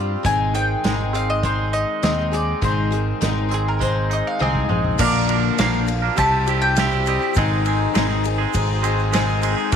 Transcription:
Already playing: fingered electric bass G2, clean electric guitar G3 C4 F4, twelve-string acoustic guitar F4 G4
0.00 twelve-string acoustic guitar C4
0.23 fingered electric bass G#1, twelve-string acoustic guitar G#2 D#3 G#3 C4 D#4 G#4, clean electric guitar G#2, mandolin G#5, kick, closed hi-hat
0.54 clean electric guitar D#3, twelve-string acoustic guitar G#3 C4 D#4 G#4, mandolin G5, closed hi-hat
0.84 fingered electric bass G#1, twelve-string acoustic guitar G#2 D#3 G#3 C4 D#4 G#4, clean electric guitar G#3, snare, closed hi-hat
1.13 twelve-string acoustic guitar G#3 C4 D#4 G#4, clean electric guitar C4, mandolin F5, closed hi-hat
1.30 mandolin D#5
1.43 twelve-string acoustic guitar G#3 C4 D#4 G#4, clean electric guitar G#3, mandolin C5, kick, closed hi-hat
1.73 clean electric guitar D#4, mandolin D#5, closed hi-hat
2.02 fingered electric bass D#2, twelve-string acoustic guitar G#2 D#3 G#3 C4 D#4 G#4, clean electric guitar C4, mandolin D#5, snare, closed hi-hat
2.32 clean electric guitar G#3, twelve-string acoustic guitar G#3 C4 D#4 G#4, mandolin D5, closed hi-hat
2.61 fingered electric bass G#1, twelve-string acoustic guitar G#2 D#3 G#3 C4 D#4 G#4, clean electric guitar G#2, mandolin C5, kick, closed hi-hat
2.90 clean electric guitar D#3, twelve-string acoustic guitar G#3 C4 D#4 G#4, closed hi-hat
3.21 fingered electric bass G#1, twelve-string acoustic guitar G#2 D#3 G#3 C4 D#4 G#4, clean electric guitar G#3, snare, closed hi-hat
3.49 twelve-string acoustic guitar G#3 C4 D#4 G#4, clean electric guitar C4, closed hi-hat
3.54 mandolin G#4
3.68 mandolin A#4
3.79 twelve-string acoustic guitar G#3 C4 D#4 G#4, clean electric guitar G#3, mandolin C5, kick, closed hi-hat
4.10 clean electric guitar D#4, mandolin D#5, closed hi-hat
4.27 mandolin F5
4.39 fingered electric bass C2, twelve-string acoustic guitar G#2 D#3 G#3 C4 D#4 G#4, clean electric guitar C4, mandolin D#5 G#5, high tom
4.55 kick
4.69 fingered electric bass A#1, clean electric guitar G#3, twelve-string acoustic guitar G#3 C4 D#4 G#4, mid tom
4.84 floor tom
4.98 fingered electric bass A#1, twelve-string acoustic guitar A#2 D3 F3 A#3 D4 A#4, clean electric guitar A#2 D3 F3 A#3 D4 A#4, mandolin D5, kick, crash, shaker
5.27 clean electric guitar F3 A#3 D4 A#4, ride
5.57 fingered electric bass A#1, clean electric guitar A#2 D3 F3 A#3 D4 A#4, twelve-string acoustic guitar A#2 D3 F3 A#3 D4 A#4, mandolin F5, snare, ride, shaker
5.72 clean electric guitar F3 A#3 D4 A#4, shaker
5.87 twelve-string acoustic guitar F3 A#3 D4 A#4, muted clean electric guitar stroke, ride, shaker
6.02 clean electric guitar F3 A#3 D4 A#4
6.16 fingered electric bass C2, clean electric guitar C3 G3 C4 E4 G4, twelve-string acoustic guitar G3 C4 E4 G4, mandolin A5, kick, ride, shaker
6.46 clean electric guitar G3 C4 E4 G4, twelve-string acoustic guitar C4 E4 G4, ride, shaker
6.62 mandolin G5, shaker
6.76 clean electric guitar C3 G3 C4 E4 G4, twelve-string acoustic guitar C3 G3 C4 E4 G4, snare, ride, shaker
6.91 clean electric guitar C4 E4 G4, shaker
7.06 clean electric guitar G3 C4 E4 G4, mandolin D#5, ride, shaker
7.20 clean electric guitar C4 E4 G4, shaker
7.34 fingered electric bass G#1, clean electric guitar G#2 D#3 G#3 C4 D#4, twelve-string acoustic guitar G#2 D#3 G#3 C4 D#4 G#4, kick, ride, shaker
7.38 clean electric guitar G#4
7.65 clean electric guitar G#3 C4 D#4 G#4, ride, shaker
7.93 fingered electric bass G#1, clean electric guitar G#2 D#3 G#3 C4 D#4 G#4, twelve-string acoustic guitar G#2 D#3, snare, ride, shaker
7.97 twelve-string acoustic guitar G#3 C4 D#4 G#4
8.08 clean electric guitar G#3 C4 D#4 G#4, shaker
8.24 twelve-string acoustic guitar C4 D#4 G#4, muted clean electric guitar stroke, ride, shaker
8.28 twelve-string acoustic guitar G#3
8.38 clean electric guitar G#3 C4 D#4 G#4
8.53 fingered electric bass G#1, twelve-string acoustic guitar G#3 C4 D#4 G#4, kick, ride, shaker
8.82 clean electric guitar G#3 C4 D#4 G#4, twelve-string acoustic guitar D#4 G#4, ride, shaker
8.86 twelve-string acoustic guitar G#3 C4
8.99 shaker
9.12 clean electric guitar G#2 D#3 G#3 C4 D#4 G#4, twelve-string acoustic guitar G#2 D#3 G#3 C4 D#4 G#4, snare, ride, shaker
9.27 clean electric guitar G#3 C4 D#4 G#4, shaker
9.42 clean electric guitar G#3 C4 D#4 G#4, ride, shaker
9.57 clean electric guitar G#3 C4 D#4 G#4, shaker
9.71 fingered electric bass A#1, clean electric guitar A#2 D3 A#3, kick, ride, shaker

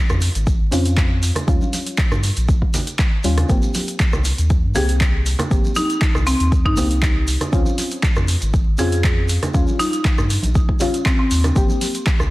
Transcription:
Already playing: synth stab C4 C#4 F4
0.09 sub bass F2, cross-stick, low conga, shekere
0.21 open hi-hat, shekere
0.35 sub bass G#1, closed hi-hat, shekere
0.47 kick, closed hi-hat, shekere
0.60 sub bass G#1
0.71 sub bass F2, synth stab C4 C#4 F4, open hi-hat, low conga, shekere
0.85 closed hi-hat, shekere
0.97 kick, clap, closed hi-hat, shekere
1.23 open hi-hat, shekere
1.35 cross-stick, closed hi-hat, low conga, shekere
1.47 sub bass D#2, synth stab G3 C#4 F4, kick, closed hi-hat, shekere
1.61 high conga, shekere
1.73 open hi-hat, high conga, shekere
1.86 closed hi-hat, shekere
1.97 kick, clap, closed hi-hat, shekere
2.12 sub bass G2, cross-stick, low conga, shekere
2.23 open hi-hat, shekere
2.37 sub bass A#1, closed hi-hat, shekere
2.48 kick, closed hi-hat, shekere
2.62 kick
2.74 open hi-hat, low conga, shekere
2.87 closed hi-hat, shekere
2.99 kick, clap, closed hi-hat, shekere
3.24 sub bass D#2, synth stab G3 C#4 F4, open hi-hat, shekere
3.37 cross-stick, closed hi-hat, low conga, shekere
3.49 sub bass G#1, synth stab A#3 C4 G4, kick, closed hi-hat, shekere
3.62 high conga, shekere
3.74 open hi-hat, high conga, shekere
3.87 closed hi-hat, shekere
4.00 kick, clap, closed hi-hat, shekere
4.13 sub bass C2, cross-stick, low conga, shekere
4.25 open hi-hat, shekere
4.38 sub bass D#2, closed hi-hat, shekere
4.50 kick, closed hi-hat, shekere
4.64 sub bass G#2
4.75 sub bass C2, synth stab A#3 C4 G4, marimba G#4, open hi-hat, low conga, shekere
4.89 closed hi-hat, shekere
5.01 kick, clap, closed hi-hat, shekere
5.26 open hi-hat, shekere
5.39 cross-stick, closed hi-hat, low conga, shekere
5.50 sub bass G#1, synth stab A#3 C4 G4, kick, closed hi-hat, shekere
5.65 high conga, shekere
5.75 marimba D#4, open hi-hat, high conga, shekere
5.90 closed hi-hat, shekere
6.02 kick, clap, closed hi-hat, shekere
6.15 sub bass C2, cross-stick, low conga, shekere
6.27 marimba C4, open hi-hat, shekere
6.40 sub bass D#2, closed hi-hat, shekere
6.52 kick, closed hi-hat, shekere
6.65 sub bass G#2, marimba D#4, kick
6.76 sub bass C2, synth stab A#3 C4 G4, marimba D#4, open hi-hat, low conga, shekere
6.90 closed hi-hat, shekere
7.02 kick, clap, closed hi-hat, shekere
7.28 open hi-hat, shekere
7.41 cross-stick, closed hi-hat, low conga, shekere
7.52 sub bass C#2, synth stab C4 C#4 F4, kick, closed hi-hat, shekere
7.66 high conga, shekere
7.78 open hi-hat, high conga, shekere
7.91 closed hi-hat, shekere
8.03 kick, clap, closed hi-hat, shekere
8.16 sub bass F2, cross-stick, low conga, shekere
8.28 open hi-hat, shekere
8.42 sub bass G#1, closed hi-hat, shekere
8.54 kick, closed hi-hat, shekere
8.67 sub bass G#1
8.78 sub bass F2, synth stab C4 C#4 F4, marimba G#4, open hi-hat, low conga, shekere
8.92 closed hi-hat, shekere
9.04 kick, clap, closed hi-hat, shekere
9.29 open hi-hat, shekere
9.43 cross-stick, closed hi-hat, low conga, shekere
9.54 sub bass D#2, synth stab G3 C#4 F4, kick, closed hi-hat, shekere
9.67 high conga, shekere
9.79 marimba D#4, open hi-hat, high conga, shekere
9.93 closed hi-hat, shekere
10.05 kick, clap, closed hi-hat, shekere
10.18 sub bass G2, cross-stick, low conga, shekere
10.30 open hi-hat, shekere
10.42 sub bass A#1, closed hi-hat, high conga, shekere
10.55 kick, closed hi-hat, shekere
10.69 kick
10.80 synth stab G3 C#4 F4, open hi-hat, low conga, shekere
10.94 closed hi-hat, shekere
11.06 marimba C4, kick, clap, closed hi-hat, shekere
11.19 marimba C4
11.31 sub bass D#2, open hi-hat, shekere
11.44 cross-stick, closed hi-hat, low conga, shekere
11.55 sub bass G#1, synth stab A#3 C4 G4, kick, closed hi-hat, shekere
11.69 high conga, shekere
11.81 open hi-hat, high conga, shekere
11.94 closed hi-hat, shekere
12.07 kick, clap, closed hi-hat, shekere
12.19 sub bass C2, cross-stick, low conga, shekere

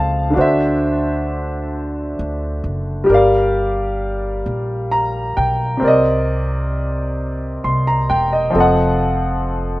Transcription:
Already playing: upright bass C#2, grand piano F3 C4 F#4 A4 D#5 F5 A5
0.30 grand piano D3 D4
0.36 upright bass D2, grand piano F#4 C5
0.41 grand piano E5
2.19 upright bass D2
2.64 upright bass F#1
3.04 grand piano G3 G4
3.09 upright bass G1, grand piano A#4 D5
3.14 grand piano F5
4.46 upright bass A#1
4.91 grand piano A#5
5.37 upright bass B1, grand piano G5
5.77 grand piano C3 C4
5.82 upright bass C2, grand piano A#4 D5
5.88 grand piano D#5
7.64 upright bass C2, grand piano C6
7.87 grand piano A#5
8.10 upright bass E1, grand piano G5
8.33 grand piano D#5
8.50 grand piano F3 C4
8.55 upright bass F1, grand piano A4 D#5
8.60 grand piano F#5

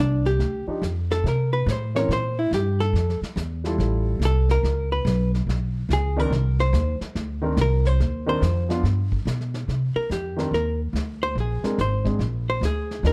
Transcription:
Already playing: upright bass C2
0.00 hollow-body jazz guitar D4
0.25 hollow-body jazz guitar G4, snare
0.39 upright bass D2, brush sweep, snare
0.67 grand piano F3 D4 D#4 G4, muted upright bass stroke
0.82 upright bass F2, snare, hi-hat pedal
1.11 hollow-body jazz guitar A4, snare
1.24 upright bass C3, brush sweep, snare
1.28 hollow-body jazz guitar A#4
1.53 hollow-body jazz guitar B4
1.66 upright bass A2, snare, hi-hat pedal
1.71 hollow-body jazz guitar C5
1.95 grand piano E3 C4 C#4 A#4, hollow-body jazz guitar C#5, snare
2.08 upright bass A#2, brush sweep, snare
2.13 hollow-body jazz guitar C5
2.39 hollow-body jazz guitar E4
2.51 upright bass G2, hollow-body jazz guitar G4, snare, hi-hat pedal
2.80 hollow-body jazz guitar A4, snare
2.93 upright bass F2, brush sweep, snare
3.10 snare
3.21 muted upright bass stroke, snare
3.36 upright bass E2, snare, hi-hat pedal
3.64 grand piano G3 E4 F4 A4, snare
3.78 upright bass A1, brush sweep, snare
4.19 upright bass C2, snare, hi-hat pedal
4.25 hollow-body jazz guitar A4
4.49 hollow-body jazz guitar A#4, snare
4.63 upright bass C#2, brush sweep, snare
4.92 hollow-body jazz guitar B4
5.05 upright bass B1, snare, hi-hat pedal
5.35 snare
5.47 upright bass B1, brush sweep, snare
5.89 upright bass C#2, snare, hi-hat pedal
5.93 hollow-body jazz guitar G#4
6.17 grand piano D#3 C4 D4 A#4, hollow-body jazz guitar A#4
6.30 upright bass C2, brush sweep, snare
6.59 hollow-body jazz guitar C5, snare
6.73 upright bass D#2, snare, hi-hat pedal
7.01 muted upright bass stroke, snare
7.15 upright bass D2, brush sweep, snare
7.42 grand piano D#3 C4 D4 A#4
7.57 upright bass C2, snare, hi-hat pedal
7.61 hollow-body jazz guitar A#4
7.85 hollow-body jazz guitar C5, snare
7.99 upright bass D#2, brush sweep, snare
8.26 grand piano D#3 C4 D4 A#4, hollow-body jazz guitar C5
8.42 upright bass F2, snare, hi-hat pedal
8.69 grand piano F3 B3 D4 F4, snare
8.83 upright bass G2, brush sweep, snare
9.12 kick
9.25 upright bass B2, snare, hi-hat pedal
9.41 snare
9.54 snare
9.68 upright bass C3, brush sweep, snare
9.96 hollow-body jazz guitar A#4, muted upright bass stroke
10.10 upright bass F2, hollow-body jazz guitar G4, snare, hi-hat pedal
10.36 grand piano D#3 C4 D4 A#4, snare
10.51 upright bass D#2, hollow-body jazz guitar A#4, brush sweep, snare
10.93 upright bass D2, snare, hi-hat pedal
11.23 hollow-body jazz guitar C5
11.35 upright bass A#1, brush sweep, snare
11.40 hollow-body jazz guitar G#4
11.63 grand piano G#3 C4 D4 A#4, muted upright bass stroke, snare
11.78 upright bass G#1, hollow-body jazz guitar C5, snare, hi-hat pedal
12.04 grand piano G#3 C4 D4 G#4, kick, snare
12.19 upright bass A#1, brush sweep, snare
12.50 hollow-body jazz guitar C5
12.61 upright bass D2, snare, hi-hat pedal
12.65 hollow-body jazz guitar G#4
12.91 snare
13.03 upright bass D#2, grand piano F3 D4 D#4 G4, hollow-body jazz guitar A#4, brush sweep, snare

